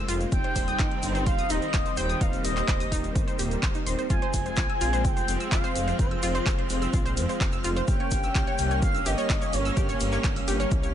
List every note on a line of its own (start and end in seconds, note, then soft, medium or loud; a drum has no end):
0.00 0.28 F3 medium
0.00 0.28 G#3 medium
0.00 0.29 G#3 medium
0.00 0.30 A#3 medium
0.00 0.29 C4 medium
0.00 0.29 F4 medium
0.00 0.29 C5 loud
0.08 0.25 F1 medium
0.08 0.13 F4 loud
0.08 open hi-hat loud
0.08 shaker loud
0.21 closed hi-hat soft
0.21 shaker soft
0.32 0.41 D#1 loud
0.32 4.06 D#3 medium
0.32 4.06 G3 medium
0.32 1.00 G3 loud
0.32 2.19 C4 loud
0.32 1.00 C4 medium
0.32 1.00 D#4 medium
0.32 1.00 C5 loud
0.32 1.22 G5 loud
0.32 kick loud
0.32 closed hi-hat medium
0.32 shaker medium
0.44 0.48 C5 medium
0.44 closed hi-hat soft
0.56 0.73 D#1 loud
0.56 0.67 C5 loud
0.56 kick medium
0.56 open hi-hat loud
0.56 shaker medium
0.68 0.75 D#6 medium
0.68 closed hi-hat soft
0.68 shaker soft
0.79 0.88 G1 loud
0.79 0.84 D#4 loud
0.79 kick loud
0.79 clap loud
0.79 closed hi-hat medium
0.79 shaker soft
0.91 closed hi-hat soft
1.03 1.28 G1 medium
1.03 2.18 G3 medium
1.03 2.18 C4 medium
1.03 2.18 D#4 medium
1.03 2.18 C5 medium
1.03 open hi-hat loud
1.03 shaker loud
1.15 1.19 C5 medium
1.15 closed hi-hat soft
1.15 shaker soft
1.26 1.43 D#1 medium
1.26 1.38 C5 loud
1.26 1.51 F5 loud
1.26 kick loud
1.26 closed hi-hat medium
1.26 shaker soft
1.38 1.46 D#6 medium
1.38 closed hi-hat soft
1.38 shaker soft
1.50 1.59 D#1 medium
1.50 1.55 D#4 loud
1.50 1.97 D#5 loud
1.50 1.96 D#5 loud
1.50 open hi-hat loud
1.50 shaker medium
1.62 closed hi-hat soft
1.62 shaker soft
1.73 1.82 D#1 medium
1.73 kick loud
1.73 clap loud
1.73 closed hi-hat loud
1.73 shaker medium
1.86 1.90 C5 medium
1.86 closed hi-hat soft
1.86 shaker soft
1.97 2.14 D#1 medium
1.97 2.09 C5 loud
1.97 2.22 G5 loud
1.97 open hi-hat loud
1.97 shaker medium
2.09 2.17 D#6 medium
2.09 closed hi-hat soft
2.09 shaker soft
2.21 2.38 D#1 loud
2.21 2.89 G3 loud
2.21 4.08 A#3 loud
2.21 2.89 C4 medium
2.21 2.25 D#4 loud
2.21 2.89 D#4 medium
2.21 2.89 C5 loud
2.21 2.44 F5 loud
2.21 kick loud
2.21 closed hi-hat loud
2.21 shaker soft
2.33 closed hi-hat soft
2.33 shaker soft
2.44 2.62 D#1 medium
2.44 3.35 D#5 medium
2.44 open hi-hat loud
2.44 shaker medium
2.56 2.61 C5 medium
2.56 clap soft
2.56 closed hi-hat soft
2.56 shaker soft
2.68 2.85 D#1 loud
2.68 2.80 C5 loud
2.68 kick loud
2.68 clap loud
2.68 closed hi-hat loud
2.68 shaker medium
2.80 2.88 D#6 medium
2.80 open hi-hat medium
2.80 shaker soft
2.92 3.09 D#1 medium
2.92 3.84 G3 medium
2.92 3.84 C4 medium
2.92 2.96 D#4 loud
2.92 3.84 D#4 medium
2.92 3.84 C5 loud
2.92 kick medium
2.92 open hi-hat loud
2.92 shaker medium
3.04 closed hi-hat soft
3.04 shaker soft
3.15 3.24 G1 loud
3.15 kick loud
3.15 closed hi-hat loud
3.15 shaker medium
3.27 3.32 C5 medium
3.27 closed hi-hat soft
3.27 shaker soft
3.39 3.56 D#1 medium
3.39 3.50 G4 medium
3.39 open hi-hat loud
3.39 shaker medium
3.51 closed hi-hat soft
3.51 shaker soft
3.63 3.71 D#1 loud
3.63 3.67 C5 medium
3.63 kick loud
3.63 clap loud
3.63 closed hi-hat loud
3.63 shaker soft
3.75 3.82 D#4 medium
3.75 closed hi-hat soft
3.75 shaker soft
3.86 3.95 D#1 medium
3.86 4.07 G3 medium
3.86 4.07 C4 medium
3.86 4.07 D#4 medium
3.86 4.07 C5 medium
3.86 3.94 C6 medium
3.86 open hi-hat loud
3.86 shaker medium
3.98 4.06 C5 medium
3.98 closed hi-hat soft
3.98 shaker soft
4.10 4.19 F1 loud
4.10 7.84 F3 medium
4.10 7.84 G#3 medium
4.10 4.78 G#3 loud
4.10 7.84 C4 medium
4.10 4.78 C4 medium
4.10 4.15 F4 loud
4.10 4.78 F4 medium
4.10 4.78 C5 loud
4.10 10.94 F5 medium
4.10 5.06 G#5 loud
4.10 10.94 F6 medium
4.10 kick loud
4.10 closed hi-hat loud
4.10 shaker soft
4.22 4.33 C5 loud
4.22 closed hi-hat soft
4.33 4.51 F1 loud
4.33 kick medium
4.33 open hi-hat loud
4.33 shaker loud
4.46 4.50 C5 medium
4.46 closed hi-hat soft
4.46 shaker soft
4.56 4.66 A#1 loud
4.56 kick loud
4.56 clap loud
4.56 closed hi-hat loud
4.56 shaker medium
4.69 4.77 E6 medium
4.69 closed hi-hat soft
4.81 5.06 A#1 loud
4.81 5.96 G#3 medium
4.81 5.96 C4 medium
4.81 4.85 F4 loud
4.81 5.96 F4 medium
4.81 5.96 C5 medium
4.81 open hi-hat loud
4.81 shaker medium
4.93 5.04 C5 loud
4.93 closed hi-hat soft
4.93 shaker soft
5.04 5.21 F1 medium
5.04 5.51 G5 loud
5.04 kick loud
5.04 closed hi-hat loud
5.04 shaker medium
5.17 5.21 C5 medium
5.17 closed hi-hat soft
5.17 shaker soft
5.28 5.37 F1 medium
5.28 open hi-hat loud
5.28 shaker medium
5.40 5.47 E6 medium
5.40 closed hi-hat soft
5.40 shaker soft
5.51 5.60 F1 medium
5.51 5.56 F4 loud
5.51 5.96 F5 loud
5.51 kick loud
5.51 clap loud
5.51 closed hi-hat loud
5.51 shaker medium
5.64 5.75 C5 loud
5.64 closed hi-hat soft
5.64 shaker soft
5.75 5.92 F1 medium
5.75 open hi-hat loud
5.75 shaker loud
5.87 5.92 C5 medium
5.87 closed hi-hat soft
5.87 shaker soft
5.99 6.16 F1 loud
5.99 6.67 G#3 loud
5.99 6.67 C4 medium
5.99 6.67 F4 medium
5.99 6.89 C5 loud
5.99 6.89 C5 medium
5.99 6.67 C5 loud
5.99 kick loud
5.99 closed hi-hat medium
5.99 shaker soft
6.11 6.18 E6 medium
6.11 closed hi-hat soft
6.23 6.40 F1 medium
6.23 6.27 F4 loud
6.23 open hi-hat loud
6.23 shaker medium
6.35 6.46 C5 loud
6.35 closed hi-hat soft
6.35 shaker soft
6.46 6.63 F1 loud
6.46 kick loud
6.46 clap loud
6.46 closed hi-hat medium
6.46 shaker medium
6.58 6.63 C5 medium
6.58 closed hi-hat soft
6.70 6.87 F1 medium
6.70 7.85 G#3 medium
6.70 7.85 C4 medium
6.70 7.85 F4 medium
6.70 7.85 C5 medium
6.70 open hi-hat loud
6.70 shaker loud
6.82 6.89 E6 medium
6.82 closed hi-hat soft
6.82 shaker soft
6.93 7.19 A#1 loud
6.93 6.98 F4 loud
6.93 kick loud
6.93 closed hi-hat medium
6.93 shaker medium
7.05 7.16 C5 loud
7.05 closed hi-hat soft
7.05 shaker soft
7.17 7.26 F2 medium
7.17 open hi-hat loud
7.17 shaker loud
7.29 7.34 C5 medium
7.29 closed hi-hat soft
7.29 shaker soft
7.41 7.58 F1 loud
7.41 kick loud
7.41 clap loud
7.41 closed hi-hat medium
7.41 shaker medium
7.52 7.60 E6 medium
7.52 closed hi-hat soft
7.52 shaker soft
7.64 7.81 F1 medium
7.64 7.69 F4 loud
7.64 open hi-hat loud
7.64 shaker medium
7.76 7.87 C5 loud
7.76 closed hi-hat soft
7.76 shaker soft
7.88 7.96 G1 loud
7.88 10.94 G3 medium
7.88 10.94 A#3 medium
7.88 8.56 A#3 loud
7.88 10.94 C#4 medium
7.88 8.56 C#4 medium
7.88 8.56 G4 medium
7.88 8.56 C#5 loud
7.88 8.78 G5 loud
7.88 kick loud
7.88 closed hi-hat medium
7.88 shaker medium
8.00 8.04 C#5 medium
8.00 closed hi-hat soft
8.11 8.28 G1 medium
8.11 kick medium
8.11 open hi-hat loud
8.11 shaker loud
8.23 8.31 E6 medium
8.23 closed hi-hat soft
8.23 shaker soft
8.35 8.44 C2 loud
8.35 8.40 G4 loud
8.35 kick loud
8.35 clap loud
8.35 closed hi-hat medium
8.35 shaker medium
8.47 8.58 C#5 loud
8.47 closed hi-hat soft
8.58 8.84 C2 medium
8.58 9.74 A#3 medium
8.58 9.74 C#4 medium
8.58 9.74 G4 medium
8.58 9.74 C#5 medium
8.58 open hi-hat loud
8.58 shaker loud
8.71 8.75 C#5 medium
8.71 closed hi-hat soft
8.71 shaker soft
8.82 8.99 G1 medium
8.82 9.08 F5 loud
8.82 kick loud
8.82 closed hi-hat medium
8.82 shaker medium
8.95 9.02 E6 medium
8.95 closed hi-hat soft
8.95 shaker soft
9.06 9.15 G1 medium
9.06 9.11 G4 loud
9.06 9.55 D#5 loud
9.06 open hi-hat loud
9.06 shaker medium
9.18 9.29 C#5 loud
9.18 closed hi-hat soft
9.18 shaker soft
9.29 9.38 G1 medium
9.29 kick loud
9.29 clap loud
9.29 closed hi-hat medium
9.29 shaker medium
9.42 9.46 C#5 medium
9.42 closed hi-hat soft
9.42 shaker soft
9.53 9.70 G1 medium
9.53 10.01 C#5 medium
9.53 open hi-hat loud
9.53 shaker loud
9.65 9.73 E6 medium
9.65 closed hi-hat soft
9.65 shaker soft
9.77 9.94 G1 loud
9.77 10.45 A#3 medium
9.77 10.45 C#4 medium
9.77 9.81 G4 loud
9.77 10.45 G4 medium
9.77 10.45 C#5 loud
9.77 kick loud
9.77 closed hi-hat medium
9.77 shaker medium
9.89 10.00 C#5 loud
9.89 closed hi-hat soft
9.89 shaker soft
10.00 10.17 G1 medium
10.00 open hi-hat loud
10.00 shaker loud
10.12 10.17 C#5 medium
10.12 clap soft
10.12 closed hi-hat soft
10.12 shaker soft
10.24 10.41 G1 loud
10.24 kick loud
10.24 clap loud
10.24 closed hi-hat medium
10.24 shaker medium
10.36 10.44 E6 medium
10.36 open hi-hat medium
10.48 10.65 G1 medium
10.48 10.94 A#3 medium
10.48 10.94 C#4 medium
10.48 10.52 G4 loud
10.48 10.94 G4 medium
10.48 10.94 C#5 loud
10.48 open hi-hat loud
10.48 shaker medium
10.60 10.71 C#5 loud
10.60 closed hi-hat soft
10.60 shaker soft
10.71 10.94 C2 loud
10.71 kick loud
10.71 closed hi-hat medium
10.71 shaker soft
10.83 10.88 C#5 medium
10.83 closed hi-hat soft
10.83 shaker soft